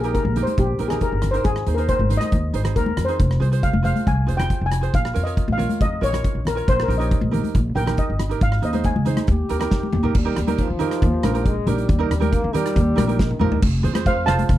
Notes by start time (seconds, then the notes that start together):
Already playing: A#1
0.00 D#4 G#4, closed hi-hat
0.04 G4 A#4
0.14 A#4, kick, closed hi-hat
0.25 A#1, high conga
0.36 D#4 G4 A#4, closed hi-hat, low conga
0.43 C5
0.47 closed hi-hat, high conga
0.58 A#1 G4, kick, closed hi-hat
0.79 A#1 D#4 G4 A#4, closed hi-hat
0.88 D#4 G4 G#4 A#4, cross-stick, closed hi-hat, low conga
1.01 A#4, kick, closed hi-hat
1.12 G1
1.22 cross-stick, closed hi-hat, low conga
1.31 D#4 G4 A#4 C5, closed hi-hat
1.44 G#1 G#4, kick, closed hi-hat
1.56 cross-stick
1.66 D#2 D#4 G#4 C5, closed hi-hat
1.74 D#4 G#4 A#4, closed hi-hat
1.79 C5
1.88 C5, kick, closed hi-hat
1.99 G#1, high conga
2.09 D#4 G#4 C5, closed hi-hat, low conga
2.17 D#5, cross-stick, closed hi-hat
2.22 high conga
2.32 D#2, kick, closed hi-hat
2.53 G#1 D#4 G#4 C5, closed hi-hat
2.63 D#4 G#4 C5, cross-stick, closed hi-hat, low conga
2.76 D#2 A#4, kick, closed hi-hat
2.86 high conga
2.97 F2, cross-stick, closed hi-hat, high conga, low conga
3.05 D#4 C5, closed hi-hat
3.09 G#4 C5
3.20 F1, kick, closed hi-hat
3.31 cross-stick
3.40 C2 F4 G#4 C5, closed hi-hat
3.51 F4 G#4 C5, closed hi-hat
3.63 F5, kick, closed hi-hat
3.73 F1, high conga
3.82 F4 G#4 C5 F5, closed hi-hat, low conga
3.96 closed hi-hat, high conga
4.07 C2 G#5, kick, closed hi-hat
4.26 F1 F4 G#4 C5, closed hi-hat
4.37 F4 G#4 C5 G5, cross-stick, closed hi-hat, low conga
4.50 kick, closed hi-hat
4.61 F1
4.66 G#5
4.72 cross-stick, closed hi-hat
4.81 F4 G#4 C5, closed hi-hat
4.94 A#1 F5, kick, closed hi-hat
5.05 cross-stick
5.13 F2 F4 A#4 C#5, closed hi-hat
5.23 F4 A#4 C#5 D#5, closed hi-hat
5.37 kick, closed hi-hat
5.48 A#1, high conga
5.53 F5
5.57 F4 A#4 C#5, closed hi-hat, low conga
5.69 closed hi-hat, high conga
5.81 F2 D#5, kick, closed hi-hat
6.01 A#1 F4 A#4 C#5, closed hi-hat
6.12 F4 A#4 C#5, cross-stick, closed hi-hat, low conga
6.24 kick, closed hi-hat
6.35 A#1
6.45 A#4, cross-stick, closed hi-hat, low conga
6.55 F4 A#4 C#5, closed hi-hat
6.68 A#1 C5, kick, closed hi-hat
6.80 A#4, cross-stick
6.88 A#1 D#4 G4 A#4, closed hi-hat
6.98 D#4 G4 C#5 D#5, closed hi-hat
7.11 kick, closed hi-hat
7.21 A#1, high conga
7.31 D#4 G4 A#4, closed hi-hat, low conga
7.44 closed hi-hat, high conga
7.55 A#1, kick, closed hi-hat
7.75 A#1 D#4 G4 A#4 G5, closed hi-hat
7.86 D#4 G4 A#4, cross-stick, closed hi-hat, low conga
7.97 D#5, kick, closed hi-hat
8.10 G1
8.19 cross-stick, closed hi-hat, low conga
8.29 D#4 G4 A#4, closed hi-hat
8.41 G#1 F5, kick, closed hi-hat
8.52 cross-stick
8.62 D#2 D#4 G#4 C5 D#5, closed hi-hat
8.72 D#4 G#4 C5, closed hi-hat, high conga
8.84 G#5, kick, closed hi-hat
8.96 C#2, high conga
9.05 D#4 G#4 C5, closed hi-hat, low conga
9.17 cross-stick, closed hi-hat, high conga
9.27 D#2 G4, kick, closed hi-hat
9.49 D#2 D#4 G4 A#4, closed hi-hat
9.59 D#4 G4 A#4, cross-stick, closed hi-hat, low conga
9.71 F2, kick, snare
9.83 high conga
9.93 D#2, mid tom, high conga, low conga
10.03 D#4 G4 A#4, floor tom
10.15 D#2 G3, kick, crash
10.25 D#4 G4 A#4
10.36 D#2, cross-stick, closed hi-hat, low conga
10.47 D#4 G4 A#4, closed hi-hat, high conga
10.58 F3, kick, closed hi-hat
10.70 D#3
10.79 D#4 G4 A#4, closed hi-hat, low conga
10.91 cross-stick, closed hi-hat
11.02 D#2, kick, closed hi-hat
11.23 A#1 D#4 G4 A#4, cross-stick, closed hi-hat, high conga
11.33 D#4 G4 A#4, closed hi-hat
11.46 G#3, kick, closed hi-hat
11.67 A#1 G3 D#4 G4 A#4, closed hi-hat, high conga, low conga
11.78 closed hi-hat
11.89 D#2, kick, closed hi-hat
11.99 D#4 G4 A#4
12.11 D#2, cross-stick, closed hi-hat, low conga
12.20 D#4 G4 A#4, closed hi-hat, high conga
12.32 A#3, kick, closed hi-hat
12.44 D#3
12.53 G3 D#4 G4 A#4, closed hi-hat, low conga
12.66 cross-stick, closed hi-hat
12.76 D#2, kick, closed hi-hat
12.96 A#1 D#4 G4 A#4, cross-stick, closed hi-hat, high conga
13.07 D#4 G4 A#4, closed hi-hat
13.19 D#3, kick, snare
13.31 high tom
13.39 A#1 F3 D#4 G4 A#4, mid tom, high conga, low conga
13.52 floor tom
13.62 F1, kick, crash
13.83 F2 F4 G#4 C5, closed hi-hat, low conga
13.93 F4 G#4 C5, cross-stick, closed hi-hat, high conga
14.06 C5 F5, kick, closed hi-hat
14.26 F1 F4 G#4 C5 F5 A5, cross-stick, closed hi-hat, low conga
14.39 closed hi-hat, high conga
14.49 F1, kick, closed hi-hat